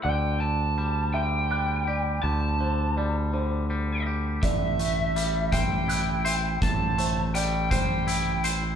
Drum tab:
HH |------|------|xxxxxx|xxxxxx|
BD |------|------|o--o--|o--o--|